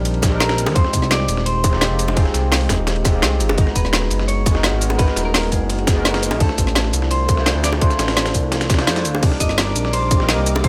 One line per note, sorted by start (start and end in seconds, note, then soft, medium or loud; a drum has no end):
0.00 0.69 A#1 medium
0.00 0.28 G3 loud
0.00 0.30 C4 loud
0.00 0.32 D4 loud
0.00 0.34 D#4 loud
0.00 0.35 A#4 loud
0.00 0.39 D5 loud
0.05 closed hi-hat medium
0.05 ride medium
0.14 ride soft
0.22 kick loud
0.22 snare loud
0.22 closed hi-hat loud
0.22 ride medium
0.22 high bongo medium
0.22 shaker medium
0.28 0.72 G3 loud
0.28 0.73 C4 medium
0.28 0.74 D4 medium
0.34 0.75 D#4 loud
0.34 0.75 A#4 loud
0.40 0.75 A#4 loud
0.40 snare loud
0.40 closed hi-hat medium
0.40 ride medium
0.49 snare loud
0.49 ride medium
0.58 closed hi-hat loud
0.58 shaker medium
0.66 0.75 D#2 medium
0.66 ride medium
0.66 high bongo loud
0.72 0.84 F1 loud
0.72 1.60 G#3 medium
0.72 1.61 C4 medium
0.72 1.62 D#4 medium
0.72 1.08 C5 loud
0.72 kick loud
0.72 closed hi-hat medium
0.72 ride medium
0.78 1.63 F4 medium
0.78 1.64 G4 medium
0.84 snare soft
0.93 1.27 C2 medium
0.93 kick medium
0.93 closed hi-hat loud
0.93 ride medium
0.93 shaker medium
1.02 snare soft
1.11 1.44 D5 loud
1.11 snare loud
1.11 closed hi-hat medium
1.11 ride medium
1.20 snare soft
1.28 1.89 D#1 medium
1.28 closed hi-hat loud
1.28 ride medium
1.28 shaker medium
1.37 snare medium
1.46 2.19 C5 loud
1.46 closed hi-hat medium
1.46 ride medium
1.64 kick loud
1.64 closed hi-hat loud
1.64 ride medium
1.64 high bongo medium
1.64 shaker medium
1.69 2.12 G#3 loud
1.69 2.14 C4 loud
1.69 2.15 D#4 medium
1.69 snare medium
1.75 2.16 F4 medium
1.75 2.17 G4 loud
1.81 snare loud
1.81 closed hi-hat medium
1.81 ride loud
1.91 2.16 F1 loud
1.99 closed hi-hat loud
1.99 ride medium
1.99 shaker medium
2.08 ride soft
2.08 high bongo medium
2.13 2.25 F1 loud
2.13 3.01 G#3 medium
2.13 3.02 C4 medium
2.13 3.03 D#4 medium
2.13 2.83 G#4 medium
2.13 kick loud
2.13 closed hi-hat medium
2.13 ride medium
2.19 3.04 F4 medium
2.19 3.05 G5 medium
2.26 snare soft
2.34 2.68 C2 medium
2.34 snare soft
2.34 closed hi-hat medium
2.34 ride medium
2.34 shaker medium
2.52 snare loud
2.52 closed hi-hat medium
2.52 open hi-hat medium
2.61 ride soft
2.69 3.24 D#1 medium
2.69 kick medium
2.69 snare loud
2.69 open hi-hat medium
2.69 ride medium
2.69 high bongo medium
2.69 shaker medium
2.87 snare loud
2.87 closed hi-hat medium
2.87 ride medium
2.96 ride soft
3.03 3.09 G#3 medium
3.03 3.11 C4 medium
3.03 3.12 D#4 medium
3.03 3.12 F4 medium
3.03 3.13 G4 medium
3.03 kick loud
3.03 snare soft
3.03 closed hi-hat loud
3.03 ride medium
3.03 high bongo medium
3.03 shaker medium
3.11 3.53 G#3 medium
3.11 3.55 C4 medium
3.11 3.56 D#4 medium
3.16 3.57 F4 medium
3.16 3.58 G#4 medium
3.22 3.42 C2 medium
3.22 snare loud
3.22 closed hi-hat medium
3.22 ride medium
3.40 3.51 G#1 medium
3.40 closed hi-hat medium
3.40 ride medium
3.40 shaker medium
3.49 3.57 F1 loud
3.49 high bongo loud
3.54 3.66 G#1 loud
3.54 4.42 G#3 medium
3.54 4.43 B3 medium
3.54 4.44 D#4 medium
3.54 kick loud
3.54 closed hi-hat medium
3.54 ride medium
3.60 4.45 F#4 medium
3.60 4.46 A#5 medium
3.67 snare soft
3.75 4.10 D#1 medium
3.75 4.25 B4 loud
3.75 kick medium
3.75 closed hi-hat medium
3.75 ride medium
3.75 shaker medium
3.85 snare soft
3.93 snare loud
3.93 closed hi-hat medium
3.93 ride medium
4.02 snare soft
4.10 4.72 F#1 medium
4.10 closed hi-hat medium
4.10 ride medium
4.10 shaker medium
4.20 snare medium
4.28 4.95 C#5 loud
4.28 closed hi-hat medium
4.28 ride medium
4.46 kick loud
4.46 closed hi-hat medium
4.46 ride medium
4.46 high bongo medium
4.46 shaker medium
4.52 4.95 G#3 loud
4.52 4.96 B3 loud
4.52 4.97 D#4 medium
4.52 snare medium
4.57 4.98 F#4 medium
4.57 4.99 A#4 loud
4.63 snare loud
4.63 closed hi-hat medium
4.63 ride medium
4.73 4.98 G#1 loud
4.81 closed hi-hat medium
4.81 ride medium
4.81 shaker medium
4.90 ride soft
4.90 high bongo medium
4.96 5.07 G#1 loud
4.96 5.84 G#3 medium
4.96 5.85 B3 medium
4.96 5.85 D#4 medium
4.96 5.25 B4 loud
4.96 kick loud
4.96 closed hi-hat medium
4.96 ride medium
5.01 5.86 F#4 medium
5.01 5.87 A#4 medium
5.08 snare soft
5.16 5.51 D#1 medium
5.16 snare soft
5.16 closed hi-hat medium
5.16 ride medium
5.16 shaker medium
5.25 5.50 A#4 loud
5.34 snare loud
5.34 closed hi-hat medium
5.34 open hi-hat medium
5.43 ride soft
5.51 6.33 F#1 medium
5.51 6.01 G#4 medium
5.51 kick medium
5.51 open hi-hat medium
5.51 ride medium
5.51 shaker medium
5.69 closed hi-hat medium
5.69 ride medium
5.79 ride soft
5.87 kick loud
5.87 snare loud
5.87 closed hi-hat medium
5.87 ride medium
5.87 high bongo medium
5.87 shaker medium
5.93 6.37 G#3 loud
5.93 6.37 B3 medium
5.93 6.38 D#4 medium
5.98 6.39 F#4 medium
5.98 6.40 A#4 loud
6.05 snare loud
6.05 closed hi-hat medium
6.05 ride medium
6.14 snare loud
6.14 ride medium
6.23 closed hi-hat medium
6.23 shaker medium
6.31 6.40 B1 medium
6.31 ride medium
6.31 high bongo loud
6.37 6.49 D2 loud
6.37 7.25 A3 medium
6.37 7.26 D4 medium
6.37 7.27 E4 medium
6.37 7.07 A4 loud
6.37 kick loud
6.37 closed hi-hat medium
6.37 ride medium
6.42 7.28 F4 medium
6.42 7.28 C5 medium
6.49 snare soft
6.58 6.92 A1 medium
6.58 kick medium
6.58 closed hi-hat medium
6.58 ride medium
6.58 shaker medium
6.67 snare soft
6.75 snare loud
6.75 closed hi-hat medium
6.75 ride medium
6.84 snare soft
6.93 7.54 C2 medium
6.93 closed hi-hat medium
6.93 ride medium
6.93 shaker medium
7.02 snare medium
7.11 7.60 C5 loud
7.11 closed hi-hat medium
7.11 ride medium
7.28 kick loud
7.28 closed hi-hat medium
7.28 ride medium
7.28 high bongo medium
7.28 shaker medium
7.34 7.77 A3 loud
7.34 7.79 D4 medium
7.34 7.80 E4 medium
7.34 snare medium
7.40 7.80 F4 medium
7.40 7.81 C5 loud
7.46 snare loud
7.46 closed hi-hat medium
7.46 ride medium
7.55 7.80 D2 loud
7.64 7.69 D5 loud
7.64 snare loud
7.64 closed hi-hat medium
7.64 ride medium
7.64 shaker medium
7.73 snare soft
7.73 high bongo medium
7.78 7.90 D2 loud
7.78 8.66 A3 medium
7.78 8.67 D4 medium
7.78 8.68 E4 medium
7.78 9.01 C5 loud
7.78 kick loud
7.78 closed hi-hat medium
7.78 ride medium
7.83 8.69 F4 medium
7.83 8.69 C5 medium
7.90 snare soft
7.90 shaker soft
7.99 8.33 A1 medium
7.99 snare loud
7.99 closed hi-hat loud
7.99 ride medium
7.99 shaker medium
8.08 snare loud
8.08 ride medium
8.17 snare loud
8.17 closed hi-hat medium
8.17 ride medium
8.26 snare loud
8.26 ride medium
8.26 shaker soft
8.34 8.89 C2 medium
8.34 kick medium
8.34 open hi-hat medium
8.34 ride medium
8.34 shaker medium
8.52 snare loud
8.52 closed hi-hat medium
8.52 ride medium
8.61 snare loud
8.61 ride medium
8.61 shaker soft
8.70 kick loud
8.70 snare medium
8.70 snare soft
8.70 closed hi-hat medium
8.70 ride medium
8.70 high bongo medium
8.70 shaker medium
8.74 9.19 A3 loud
8.74 9.20 D4 medium
8.74 snare medium
8.74 ride medium
8.79 9.21 E4 loud
8.79 9.22 F4 medium
8.79 9.22 C5 loud
8.79 snare loud
8.79 ride medium
8.87 9.06 F2 medium
8.87 snare loud
8.87 closed hi-hat medium
8.87 ride medium
8.96 snare loud
8.96 ride medium
8.96 shaker soft
9.05 9.21 D2 medium
9.05 closed hi-hat loud
9.05 ride medium
9.05 shaker medium
9.15 high bongo medium
9.19 9.31 C2 loud
9.19 10.07 G3 medium
9.19 10.08 C4 medium
9.19 10.09 D4 medium
9.19 10.68 A#4 medium
9.19 10.68 D6 medium
9.19 kick loud
9.19 closed hi-hat medium
9.19 crash medium
9.19 ride medium
9.25 10.10 D#4 medium
9.25 10.11 A#4 medium
9.32 snare soft
9.40 9.74 G1 medium
9.40 9.58 D#5 loud
9.40 kick medium
9.40 closed hi-hat loud
9.40 ride medium
9.40 shaker medium
9.49 snare soft
9.58 9.93 D5 loud
9.58 snare loud
9.58 closed hi-hat medium
9.58 ride medium
9.67 snare soft
9.76 10.36 A#1 medium
9.76 closed hi-hat loud
9.76 ride medium
9.76 shaker medium
9.85 snare medium
9.93 10.26 C5 loud
9.93 closed hi-hat medium
9.93 ride medium
10.11 kick loud
10.11 closed hi-hat loud
10.11 ride medium
10.11 high bongo medium
10.11 shaker medium
10.17 10.59 G3 loud
10.17 10.62 A#3 medium
10.17 10.61 C4 medium
10.17 snare medium
10.22 10.63 D#4 loud
10.22 10.64 A#4 loud
10.28 10.63 D#5 loud
10.28 snare loud
10.28 closed hi-hat medium
10.28 ride medium
10.38 10.63 C2 loud
10.46 closed hi-hat loud
10.46 ride medium
10.46 shaker medium
10.55 ride soft
10.55 high bongo loud
10.61 10.68 C2 loud
10.61 10.68 G3 medium
10.61 10.68 C4 medium
10.61 10.68 D4 medium
10.61 10.68 D5 loud
10.61 kick loud
10.61 closed hi-hat medium
10.61 ride medium